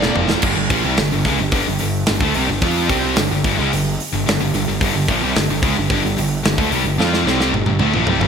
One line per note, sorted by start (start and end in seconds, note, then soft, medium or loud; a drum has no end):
0.00 0.42 A#2 medium
0.00 0.43 A#2 medium
0.00 0.43 F3 medium
0.00 0.43 A#3 loud
0.00 0.44 A#3 loud
0.00 0.14 D5 medium
0.00 snare medium
0.15 0.35 F#1 medium
0.15 mid tom medium
0.30 snare medium
0.42 0.56 G1 loud
0.42 0.56 G2 loud
0.42 0.56 D3 loud
0.42 kick loud
0.42 crash loud
0.57 0.70 G1 medium
0.57 0.71 G2 medium
0.57 0.71 D3 medium
0.70 0.84 A#1 medium
0.70 0.84 A#2 medium
0.70 0.84 F3 medium
0.70 kick loud
0.70 open hi-hat medium
0.84 0.98 C2 loud
0.84 0.98 C3 loud
0.84 0.98 G3 loud
0.97 1.12 G1 medium
0.97 1.11 G2 medium
0.97 1.12 D3 medium
0.97 snare loud
0.97 open hi-hat medium
1.12 1.25 G1 medium
1.12 1.26 G2 medium
1.12 1.26 D3 medium
1.25 1.38 C#2 medium
1.25 1.39 C#3 medium
1.25 1.39 G#3 medium
1.25 kick loud
1.25 snare soft
1.25 open hi-hat medium
1.40 1.51 G1 medium
1.40 1.51 G2 medium
1.40 1.52 D3 medium
1.51 1.66 G1 medium
1.51 1.66 G2 loud
1.51 1.66 D3 loud
1.51 kick loud
1.51 open hi-hat medium
1.68 1.80 G1 medium
1.68 1.79 G2 medium
1.68 1.79 D3 medium
1.79 2.07 G1 medium
1.79 2.03 G2 medium
1.79 2.03 D3 medium
1.79 open hi-hat medium
2.06 2.20 G1 medium
2.06 2.22 G2 medium
2.06 2.20 D3 medium
2.06 snare loud
2.06 open hi-hat medium
2.20 2.34 D2 medium
2.20 2.35 D3 medium
2.20 2.35 A3 medium
2.20 kick loud
2.34 2.48 C2 medium
2.34 2.49 C3 medium
2.34 2.49 G3 medium
2.34 open hi-hat medium
2.49 2.61 G1 medium
2.49 2.63 G2 medium
2.49 2.62 D3 medium
2.61 2.88 F2 loud
2.61 2.89 F3 medium
2.61 2.90 C4 loud
2.61 2.90 F4 loud
2.61 kick loud
2.61 open hi-hat medium
2.89 3.15 C2 medium
2.89 3.17 C3 medium
2.89 3.17 G3 medium
2.89 3.17 C4 medium
2.89 kick loud
2.89 open hi-hat medium
3.16 3.30 G1 medium
3.16 3.30 G2 medium
3.16 3.31 D3 medium
3.16 snare loud
3.16 open hi-hat medium
3.31 3.44 G1 medium
3.31 3.45 G2 medium
3.31 3.45 D3 medium
3.44 3.57 G1 medium
3.44 3.58 G2 medium
3.44 3.58 D3 loud
3.44 kick loud
3.44 open hi-hat medium
3.58 3.71 C#2 medium
3.58 3.71 C#3 loud
3.58 3.71 G#3 loud
3.73 3.98 G1 medium
3.73 3.94 G2 medium
3.73 3.94 D3 medium
3.73 open hi-hat medium
4.00 open hi-hat medium
4.13 4.25 G1 medium
4.13 4.25 G2 medium
4.13 4.26 D3 medium
4.27 4.40 G1 medium
4.27 4.39 G2 medium
4.27 4.40 D3 medium
4.27 snare loud
4.27 open hi-hat medium
4.40 4.53 G1 medium
4.40 4.54 G2 medium
4.40 4.54 D3 medium
4.53 4.66 G1 medium
4.53 4.67 G2 medium
4.53 4.68 D3 medium
4.53 open hi-hat medium
4.68 4.80 G1 medium
4.68 4.81 G2 medium
4.68 4.82 D3 medium
4.81 4.94 G1 loud
4.81 4.94 G2 loud
4.81 4.95 D3 loud
4.81 kick loud
4.81 open hi-hat medium
4.94 5.07 G1 medium
4.94 5.09 G2 medium
4.94 5.09 D3 medium
5.08 5.21 A#1 medium
5.08 5.21 A#2 medium
5.08 5.22 F3 medium
5.08 kick loud
5.08 open hi-hat medium
5.22 5.35 C2 loud
5.22 5.35 C3 medium
5.22 5.35 G3 loud
5.35 5.48 G1 medium
5.35 5.49 G2 medium
5.35 5.50 D3 medium
5.35 snare loud
5.35 open hi-hat medium
5.50 5.62 G1 medium
5.50 5.63 G2 medium
5.50 5.63 D3 medium
5.62 5.75 C#2 medium
5.62 5.76 C#3 medium
5.62 5.76 G#3 loud
5.62 kick loud
5.62 open hi-hat medium
5.77 5.89 G1 medium
5.77 5.89 G2 medium
5.77 5.90 D3 medium
5.89 6.02 G1 medium
5.89 6.02 G2 loud
5.89 6.03 D3 loud
5.89 kick loud
5.89 open hi-hat medium
6.04 6.16 G1 medium
6.04 6.16 G2 medium
6.04 6.16 D3 medium
6.17 6.43 G1 medium
6.17 6.39 G2 medium
6.17 6.39 D3 medium
6.17 open hi-hat medium
6.44 6.57 G1 medium
6.44 6.58 G2 medium
6.44 6.56 D3 medium
6.44 snare loud
6.44 open hi-hat medium
6.58 6.70 D2 medium
6.58 6.70 D3 medium
6.58 6.70 A3 loud
6.58 kick loud
6.70 6.84 C2 medium
6.70 6.83 C3 loud
6.70 6.84 G3 loud
6.70 open hi-hat medium
6.84 6.97 G1 medium
6.84 6.98 G2 medium
6.84 6.98 D3 medium
6.98 7.24 F2 loud
6.98 7.25 F3 medium
6.98 7.25 C4 loud
6.98 7.25 F4 loud
6.98 snare medium
7.13 snare medium
7.25 7.51 C2 medium
7.25 7.52 C3 medium
7.25 7.52 G3 medium
7.25 7.52 C4 medium
7.25 snare medium
7.40 snare medium
7.52 7.65 G1 medium
7.52 7.65 G2 medium
7.52 7.66 D3 medium
7.52 high tom medium
7.65 7.79 G1 medium
7.65 7.80 G2 medium
7.65 7.78 D3 medium
7.65 high tom medium
7.79 7.92 D2 medium
7.79 7.92 D3 medium
7.79 7.93 A3 medium
7.79 high tom medium
7.93 8.06 A#1 medium
7.93 8.06 A#2 loud
7.93 8.06 F3 loud
7.93 mid tom medium
8.07 8.19 C2 medium
8.07 8.20 C3 loud
8.07 8.20 G3 loud
8.07 mid tom medium
8.20 8.28 G1 loud
8.20 8.28 G2 medium
8.20 8.28 D3 medium
8.20 8.28 G3 medium
8.20 mid tom medium